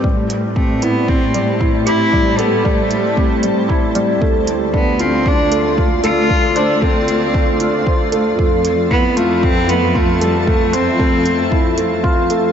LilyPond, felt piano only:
\new Staff \with { instrumentName = "Felt piano" } { \time 4/4 \key a \minor \tempo 4 = 115 g8 r8 c'8 e'8 r8 g8 e'8 g'8 | g8 a'8 g8 r8 c'8 g8 e'8 g8 | a8 r8 d'8 f'8 r8 a8 f'8 a'8 | a8 c''8 a8 r8 d'8 f'8 c''8 a8 |
a8 r8 e'8 f'8 r8 a8 f'8 a'8 | a8 c''8 a8 r8 e'8 a8 f'8 a8 | }